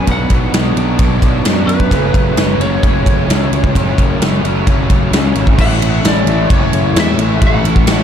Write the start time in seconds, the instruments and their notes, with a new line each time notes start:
Already playing: lead electric guitar G#5
0.07 picked electric bass B1, overdriven electric guitar B2 F#3 B3 D4, kick, ride
0.11 lead electric guitar F#5
0.30 picked electric bass B1, kick, ride
0.53 picked electric bass B1, overdriven electric guitar B2 F#3 B3 D4, snare, ride
0.75 picked electric bass B1, overdriven electric guitar F#3 B3 D4, ride
0.98 picked electric bass B1, overdriven electric guitar B2 F#3 B3 D4, kick, ride
1.22 picked electric bass B1, kick, ride
1.44 picked electric bass F#2, overdriven electric guitar B2 F#3 B3 D4, snare, ride
1.67 picked electric bass F#2, lead electric guitar B4, ride
1.80 kick
1.91 picked electric bass F#1, overdriven electric guitar F#2 C#3 F#3 A3 C#4, kick, ride
2.14 picked electric bass F#1, kick, ride
2.36 picked electric bass F#1, overdriven electric guitar C#3 F#3 A3 C#4, snare, ride
2.58 picked electric bass F#1, overdriven electric guitar A3 C#4, lead electric guitar C#5, ride
2.62 overdriven electric guitar F#3
2.82 picked electric bass F#1, overdriven electric guitar F#2 C#3 F#3 A3 C#4, kick, ride
3.06 picked electric bass F#1, kick, ride
3.28 picked electric bass C#2, overdriven electric guitar C#3 F#3 A3 C#4, snare, ride
3.52 picked electric bass C#2, ride
3.64 kick
3.75 picked electric bass F#1, overdriven electric guitar F#2 C#3 F#3 A3 C#4, kick, ride
3.98 picked electric bass F#1, kick, ride
4.20 picked electric bass F#1, overdriven electric guitar C#3 F#3 A3 C#4, snare, ride
4.44 picked electric bass F#1, overdriven electric guitar F#3 A3 C#4, ride
4.66 picked electric bass F#1, overdriven electric guitar F#2 C#3 F#3 A3 C#4, kick, ride
4.90 picked electric bass F#1, kick, ride
5.12 picked electric bass C#2, overdriven electric guitar C#3 F#3 A3 C#4, snare, ride
5.35 picked electric bass G#1, ride
5.47 kick
5.58 picked electric bass A1, overdriven electric guitar A2 E3 A3 C#4 E4, lead electric guitar F#5, kick, crash
5.80 picked electric bass A1, overdriven electric guitar A3 C#4 E4, ride
6.03 picked electric bass A1, overdriven electric guitar E3 A3 C#4 E4, lead electric guitar D5, snare, ride
6.25 picked electric bass A1, overdriven electric guitar A3 C#4 E4, ride
6.50 picked electric bass F#1, lead electric guitar C#5, kick, ride
6.72 picked electric bass F#1, ride
6.95 picked electric bass E2, overdriven electric guitar E3 A3 C#4 E4, snare, ride
7.00 lead electric guitar E5
7.18 picked electric bass A1, overdriven electric guitar A3 C#4 E4, ride
7.42 picked electric bass A1, overdriven electric guitar A2 E3 A3 C#4 E4, kick, ride
7.47 lead electric guitar F#5
7.63 picked electric bass A1, overdriven electric guitar A3 C#4 E4, ride
7.76 kick
7.87 picked electric bass A1, overdriven electric guitar E3 A3 C#4 E4, snare, ride